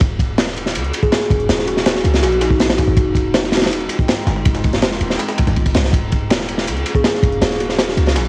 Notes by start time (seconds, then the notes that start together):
0.01 D#1 A#3 C#4 D#4 F#4, kick, closed hi-hat, ride
0.19 kick, closed hi-hat, ride
0.38 snare, closed hi-hat, ride
0.47 snare, closed hi-hat
0.56 closed hi-hat, ride
0.66 snare
0.75 C#2, closed hi-hat, ride
0.84 closed hi-hat
0.93 closed hi-hat, ride
1.03 G#4, kick, closed hi-hat
1.12 snare, closed hi-hat, ride
1.20 snare
1.30 F1, kick, closed hi-hat, ride
1.40 closed hi-hat
1.49 D#1, snare, closed hi-hat, ride
1.59 snare
1.67 F#4, closed hi-hat, ride
1.77 snare
1.86 snare, closed hi-hat, ride
1.95 snare
2.04 C#2, closed hi-hat, ride
2.14 snare, closed hi-hat
2.23 A#1 F#4, snare, closed hi-hat, ride
2.32 closed hi-hat
2.41 D#4, snare, closed hi-hat, ride
2.51 kick, snare
2.60 snare, closed hi-hat, ride
2.69 snare, ride
2.78 kick, snare, open hi-hat, ride
2.88 G#1
2.97 F1 G#3 C4 F4, kick, closed hi-hat, ride
3.15 kick, closed hi-hat, ride
3.34 snare, closed hi-hat, ride
3.43 snare, closed hi-hat
3.52 snare, closed hi-hat, ride
3.57 snare, ride
3.62 snare, ride
3.66 snare, ride
3.71 D#1, closed hi-hat, ride
3.81 closed hi-hat
3.89 closed hi-hat, ride
3.99 kick, closed hi-hat
4.08 snare, closed hi-hat, ride
4.17 snare
4.27 G1, snare, closed hi-hat
4.36 snare
4.45 F1, kick, closed hi-hat, ride
4.55 snare, closed hi-hat, ride
4.64 kick, snare, ride
4.73 snare, closed hi-hat
4.82 snare, closed hi-hat, ride
4.92 snare
5.01 D#1, closed hi-hat, ride
5.10 snare
5.19 snare, closed hi-hat, ride
5.29 snare, closed hi-hat
5.38 kick, snare, closed hi-hat, ride
5.47 G1, snare, closed hi-hat
5.56 kick, ride
5.66 kick, ride
5.75 C2, snare, open hi-hat, ride
5.85 snare
5.93 D#1 A#3 C#4 F#4, kick, closed hi-hat, ride
6.12 kick, closed hi-hat, ride
6.30 snare, closed hi-hat, ride
6.40 snare, closed hi-hat
6.49 closed hi-hat, ride
6.58 snare
6.67 C#2, closed hi-hat, ride
6.77 closed hi-hat
6.86 closed hi-hat, ride
6.95 G#4, kick, closed hi-hat
7.04 snare, closed hi-hat, ride
7.14 snare
7.23 F1, kick, closed hi-hat, ride
7.32 closed hi-hat
7.41 D#1, snare, closed hi-hat, ride
7.50 snare
7.60 F#4, closed hi-hat, ride
7.69 snare
7.79 snare, closed hi-hat, ride
7.88 snare
7.97 C#2, closed hi-hat, ride
8.07 snare, closed hi-hat
8.15 A#1, snare, closed hi-hat, ride
8.25 closed hi-hat